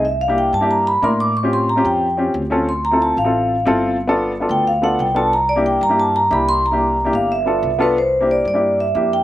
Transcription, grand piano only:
X:1
M:4/4
L:1/16
Q:1/4=182
K:Cmix
V:1 name="Grand piano"
z3 [B,DEG]3 z [B,DEG]3 z2 [B,DEB]4 | z [^B,^C^EG]3 z [B,CEG]3 z2 [B,CEG]3 z [B,CEA]2 | z3 [CEFA]3 z [CEFA]3 z2 [CEFA]4 | z [=B,DFA]3 z [B,DFA]3 z2 [B,DFA]3 z [B,DFA]2 |
z3 [B,DEG]3 z [B,DEG]3 z2 [B,DEG]4 | z [B,DEG]3 z [B,DEG]3 z2 [=B,DFA]3 z [B,DFA]2 | z3 [B,DEG]3 z [B,DEG]3 z2 [B,DEG]4 |]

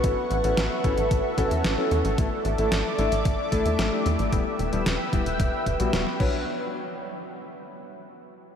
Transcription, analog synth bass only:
X:1
M:4/4
L:1/16
Q:1/4=112
K:F#phr
V:1 name="Analog synth bass" clef=bass
A,,, z A,,, A,,, A,,, z A,,, A,,, A,,, z A,,, E,, A,,, z E,, A,,, | A,,, z A,,, A,,, A,,, z A,,, A,,, A,,, z A,,, E,, A,,, z E,, A,,, | E,,, z E,,, E,,, E,,, z E,,, E,,, E,,, z E,,, B,,, E,,, z B,,,2 | z16 |]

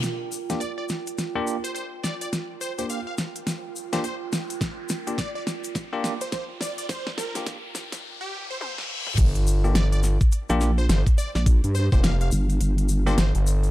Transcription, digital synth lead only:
X:1
M:4/4
L:1/16
Q:"Swing 16ths" 1/4=105
K:Gm
V:1 name="Digital synth lead"
z4 d d z4 z c c z d d | z2 c c f f z4 z c c z3 | z4 d d z4 z c c z d d | c z B z6 G2 c c z3 |
z4 d d z4 z c c z d d | z2 c c f f z4 z c c z3 |]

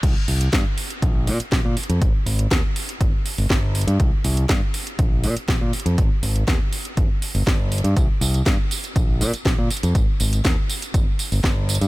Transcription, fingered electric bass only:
X:1
M:4/4
L:1/16
Q:1/4=121
K:Ablyd
V:1 name="Fingered electric bass" clef=bass
C,, z C,,2 G,, z3 B,,,2 B,, z B,,, B,, z F,, | A,,, z A,,,2 E,, z3 G,,, z2 G,,, z3 G,, | C,, z C,,2 G,, z3 B,,,2 B,, z B,,, B,, z F,, | A,,, z A,,,2 E,, z3 G,,, z2 G,,, G,,,3 G,, |
C,, z C,,2 G,, z3 B,,,2 B,, z B,,, B,, z F,, | A,,, z A,,,2 E,, z3 G,,, z2 G,,, G,,,3 G,, |]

